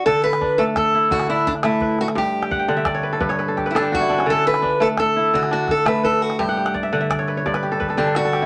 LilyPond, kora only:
<<
  \new Staff \with { instrumentName = "Kora" } { \time 12/8 \key d \major \tempo 4. = 114 << { r1. | r8. g''16 fis''16 g''16 fis''16 e''16 d''16 cis''16 b'16 a'16 b'16 cis''16 b'16 a'16 g'16 b'16 a'16 g'16 fis'16 e'16 d'16 cis'16~ | cis'16 r1 r4. r16 | e''16 fis''16 g''16 fis''16 d''16 e''16 fis''16 e''16 d''16 cis''16 b'16 cis''16 d''16 b'16 g'16 a'16 b'16 a'16 g'16 a'16 b'16 a'16 g'16 e'16 | } \\ { a'4 d'4. e'4 d'4. b'4~ | b'8 r1 r4. | a'4 d'4. e'4 d'4. b'4~ | b'8 r1 r4. | } >> }
  \new Staff \with { instrumentName = "Kora" } { \clef bass \time 12/8 \key d \major d4 r8 a4 r8 d4 r8 a4 r8 | g,4 r8 d4 r8 g,4 r8 d4 r8 | d4 r8 a4 r8 d4 r8 a4 r8 | g,4 r8 d4 r8 g,4 r8 d4 r8 | }
>>